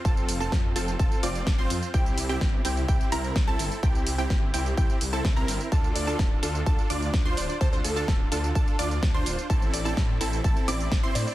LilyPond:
<<
  \new Staff \with { instrumentName = "Synth pluck" } { \time 4/4 \key d \minor \tempo 4 = 127 a''8. a''8. a''8 a''8 d'''8. c'''8. | g''8. g''8. g''8 g''8 bes''8. a''8. | g''8. g''8. g''8 g''8 r16 a''8 bes''8. | a''8. a''8. a''8 a''8 d'''8. c'''8. |
a''8. a''8. a''8 a''8 d'''8. c'''8. | a''8. a''8. a''8 a''8 d'''8. c'''8. | }
  \new Staff \with { instrumentName = "Digital synth lead" } { \time 4/4 \key d \minor r1 | r1 | r1 | r8 d''8 r2 r8 d''16 d''16 |
c''16 c''16 a'8. r2 r8. | r8 d''8 r2 r8 d''16 d''16 | }
  \new Staff \with { instrumentName = "Supersaw synth" } { \time 4/4 \key d \minor <c' f' a'>8. <c' f' a'>8. <c' f' a'>8 <c' f' a'>8 <c' f' d''>8. <c' f' c''>8. | <c' e' g'>8. <c' e' g'>8. <c' e' g'>8 <c' e' g'>8 <c' e' bes'>8. <c' e' a'>8. | <c' e' g'>8. <c' e' g'>8. <c' e' g'>8 <c' e' g'>8 r16 <c' e' a'>8 <c' e' bes'>8. | <d' f' a'>8. <d' f' a'>8. <d' f' a'>8 <d' f'>8 <d' f' d''>8. <d' f' c''>8. |
<d' f' a'>8. <d' f' a'>8. <d' f' a'>8 <d' a'>8 <d' f' d''>8. <d' f' c''>8. | <c' e' a'>8. <c' e' a'>8. <c' e' a'>8 <c' e' a'>8 <c' e' d''>8. <c' e' c''>8. | }
  \new Staff \with { instrumentName = "Detuned saw bass" } { \clef bass \time 4/4 \key d \minor f,,8 f,,8 f,8 f,,8 f,,8 f,,8 f,,8 f,8 | c,8 c,8 g,,8 c,8 c,8 c,8 c,8 g,,8 | c,8 c,8 g,,8 c,8 c,8 c,8 c,8 g,,8 | d,8 d,8 d,,8 d,8 d,8 d,8 d,8 d,,8 |
d,8 d,8 d,,8 d,8 d,8 d,8 d,8 d,,8 | a,,8 a,,8 a,8 a,,8 a,,8 a,,8 a,,8 a,8 | }
  \new DrumStaff \with { instrumentName = "Drums" } \drummode { \time 4/4 <bd tamb>16 tamb16 <hho tamb>16 tamb16 <bd sn tamb>8 <hho tamb>16 tamb16 <bd tamb>16 tamb16 <hho tamb>16 tamb16 <bd sn tamb>8 <hho tamb>16 tamb16 | <bd tamb>16 tamb16 <hho tamb>16 tamb16 <bd sn tamb>8 <hho tamb>16 tamb16 <bd tamb>16 tamb16 <hho tamb>16 tamb16 <bd sn tamb>8 <hho tamb>16 tamb16 | <bd tamb>16 tamb16 <hho tamb>16 tamb16 <bd sn tamb>8 <hho tamb>16 tamb16 <bd tamb>16 tamb16 <hho tamb>16 tamb16 <bd sn tamb>16 tamb16 <hho tamb>16 tamb16 | <bd tamb>16 tamb16 <hho tamb>16 tamb16 <bd sn tamb>8 <hho tamb>16 tamb16 <bd tamb>16 tamb16 <hho tamb>16 tamb16 <bd sn tamb>8 <hho tamb>16 tamb16 |
<bd tamb>16 tamb16 <hho tamb>16 tamb16 <bd sn tamb>8 <hho tamb>16 tamb16 <bd tamb>16 tamb16 <hho tamb>16 tamb16 <bd sn tamb>8 <hho tamb>16 tamb16 | <bd tamb>16 tamb16 <hho tamb>16 tamb16 <bd sn tamb>8 <hho tamb>16 tamb16 <bd tamb>16 tamb16 <hho tamb>16 tamb16 <bd sn tamb>8 <hho tamb>16 tamb16 | }
>>